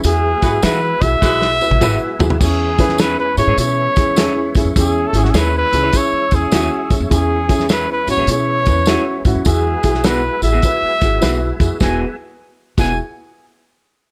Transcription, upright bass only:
X:1
M:4/4
L:1/16
Q:"Swing" 1/4=102
K:E
V:1 name="Upright bass" clef=bass
E,,2 G,,2 E,2 B,,,2 B,,,3 A,,, G,,, z =F,,2 | E,,4- E,, z G,, G,, B,,2 E,,3 z G,, =F,, | E,,2 G,,,2 D,,2 C,,2 z2 E,,2 D,, z F,, =F,, | E,,4- E,, z G,, G,, B,,2 E,,3 z G,, =F,, |
E,,2 B,,,4 A,,,2 z2 G,,,2 B,,,2 =F,, z | E,,, z4 z E,,,2 z8 |]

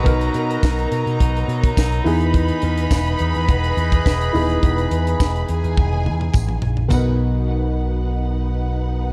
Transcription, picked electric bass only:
X:1
M:4/4
L:1/16
Q:1/4=105
K:B
V:1 name="Picked electric bass" clef=bass
B,,,2 B,,2 B,,,2 B,, B,, B,,,2 B,,2 B,,,2 E,,2- | E,,2 E,,2 E,,,2 E,, E,, E,,,2 E,,2 E,,,2 D,,,2 | E,,,2 E,,2 E,,,2 E,, E,, E,,,2 E,,2 =A,,,2 ^A,,,2 | B,,,16 |]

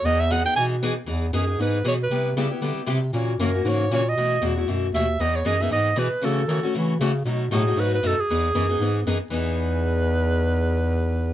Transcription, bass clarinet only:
X:1
M:4/4
L:1/8
Q:"Swing" 1/4=233
K:E
V:1 name="Bass clarinet" clef=bass
E,,4 B,,4 | E,,2 F,,2 G,,2 B,,2 | =C,2 ^C, z =D, D, =C,2 | ^A,,2 F,,2 G,,2 A,,2 |
B,,2 E,,2 F,,2 D,,2 | E,,2 F,,2 G,,2 B,, B,, | C,2 D, D, E,2 C,2 | B,,2 A,,2 G,,2 F,, F,, |
E,,2 F,,2 G,,2 F,, z | E,,8- | E,,8 |]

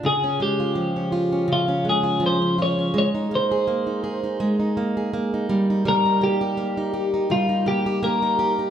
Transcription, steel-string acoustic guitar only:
X:1
M:4/4
L:1/16
Q:"Swing 16ths" 1/4=82
K:Dblyd
V:1 name="Steel-string acoustic guitar"
D, D A, F F, D F D D, D A, F F, D F D | A, E B, A B, E A E A, E B, A B, E G, E | G, E B, G B, E G E G, E B, G B, E G E |]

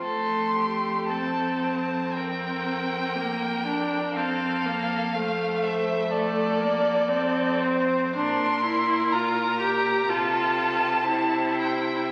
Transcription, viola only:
X:1
M:4/4
L:1/8
Q:1/4=60
K:F
V:1 name="Viola"
A,2 C2 C2 B, D | C B, A,2 A, B, C2 | D E F G F2 E2 |]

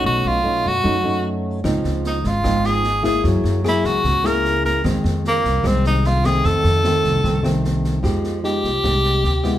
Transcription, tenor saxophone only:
X:1
M:4/4
L:1/8
Q:1/4=150
K:Fphr
V:1 name="Tenor saxophone"
^F =F2 ^F3 z2 | z2 E F2 A2 A | z2 _F G2 B2 B | z2 B,2 C E F A |
=A6 z2 | [K:Fdor] z2 G6 |]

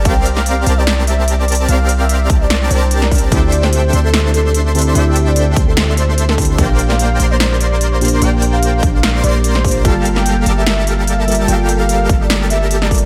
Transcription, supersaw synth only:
X:1
M:4/4
L:1/8
Q:"Swing 16ths" 1/4=147
K:Gdor
V:1 name="Supersaw synth"
[CGBdf]3 [CGBda]4- [CGBda] | [CGBdf]3 [CGBda]2 [CGBda]3 | [DAceg]3 [DAcec']4- [DAcec'] | [DAceg]3 [DAcec']4- [DAcec'] |
[B,Bcdg]3 [B,Bcdc']4- [B,Bcdc'] | [B,Bcdg]3 [cc']2 [B,Bcdc']3 | [G,GABf]3 [G,GABa]4- [G,GABa] | [G,GABf]3 [G,GABa]4- [G,GABa] |]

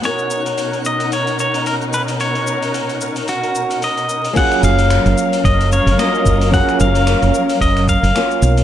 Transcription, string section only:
X:1
M:4/4
L:1/8
Q:"Swing 16ths" 1/4=111
K:F#
V:1 name="String section"
[B,,CDA]8- | [B,,CDA]8 | [F,CAe]8- | [F,CAe]8 |]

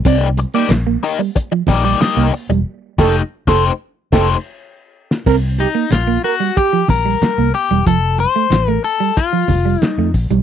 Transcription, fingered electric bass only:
X:1
M:4/4
L:1/16
Q:1/4=92
K:Cdor
V:1 name="Fingered electric bass" clef=bass
C,,3 z B,,,2 z4 B,,,2 z C,, z =E,,, | z2 F,,,2 z F,,,2 z2 F,,,2 z4 z | C,,3 z B,,,2 z4 B,,,2 z C,, z =E,,, | F,,,3 z A,,,2 z4 F,,,2 z F,, B,,, =B,,, |]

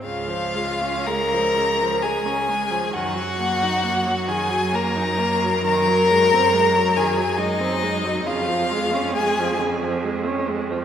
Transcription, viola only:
X:1
M:3/4
L:1/16
Q:1/4=67
K:Db
V:1 name="Viola" clef=bass
D, F, A, D A, F, D, F, A, D A, F, | E, G, B, E B, G, E, G, B, E B, G, | E, G, A, C A, G, E, G, A, C A, G, | D, F, A, D A, F, D, F, A, D A, F, |]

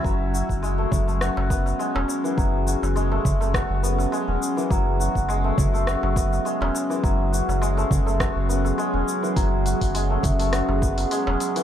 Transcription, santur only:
X:1
M:4/4
L:1/16
Q:"Swing 16ths" 1/4=103
K:F#m
V:1 name="Santur"
F, z F2 G, A, z A, F2 B, z G, C z E, | F, z F2 G, A, z A, F2 B, z G, C z E, | F, z F2 G, A, z A, F2 B, z G, C z E, | F, z F2 G, A, z A, F2 B, z G, C z E, |
F, z F2 G, A, z A, F2 B, z G, C z E, |]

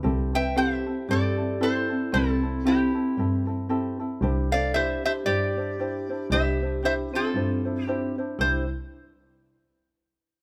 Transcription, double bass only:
X:1
M:4/4
L:1/8
Q:"Swing" 1/4=115
K:C
V:1 name="Double bass" clef=bass
C,,4 G,,4 | C,,4 G,,4 | C,,4 G,,4 | C,,4 G,,4 |
C,, z6 z |]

